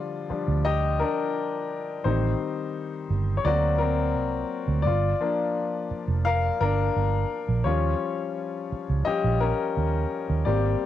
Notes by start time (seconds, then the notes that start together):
Already playing: D3 F3 G3 F4 D5
0.30 F3 G3 D4, muted fingered electric bass stroke
0.48 D2
0.65 G4 D#5
0.99 D4 A#4
2.04 A1 D#3 G3 C4 D#4 C5
3.10 G1
3.37 C#5
3.45 D2 F#3 A#3 C4 F#4 D5
3.78 C4 A#4
4.15 C2
4.68 D2
4.82 G1 D5
4.86 F4
5.20 F3 A#3 D4
5.91 muted fingered electric bass stroke
6.08 F1
6.25 A#4 F5
6.61 G1 D4 A#4
6.96 G1
7.49 A#1
7.64 D#2 F3 G3 C#4 F4 C#5
8.72 muted fingered electric bass stroke
8.89 C#2
9.05 F3 G3 C#4 G4 D#5, muted fingered electric bass stroke
9.24 A#1
9.40 C#4 A#4
9.77 D#2
10.30 D#2
10.45 G#1 G3 A#3 C4 G4 D5